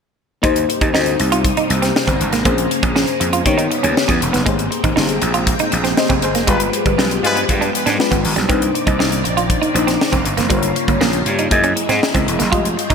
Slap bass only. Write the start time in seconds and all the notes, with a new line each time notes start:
0.44 D#2
0.81 D#2
0.94 D2
1.20 C2
1.70 C2
2.08 G1
2.21 G1
2.33 G#1
2.45 A#1
2.83 A#1
3.21 F2
3.46 D#3
3.84 D#2
4.09 E2
4.22 E1
4.34 F#1
4.47 G#1
4.84 G#1
4.97 G1
5.22 A#1
5.73 A#1
6.10 F1
6.23 G1
6.36 F1
6.48 G1
6.86 G1
6.98 B1
7.23 G2
7.49 G2
7.86 G#2
8.11 G#1
8.25 G#1
8.37 B1
8.49 C2
8.87 C2
8.99 C2
9.24 A#1
9.75 A#1
10.13 F1
10.26 G1
10.38 F1
10.50 G1
10.88 G1
11.01 A#1
11.26 G2
11.51 F#2
11.89 G#2
12.15 C#2
12.28 E1
12.41 F#1
12.53 F1
12.90 F1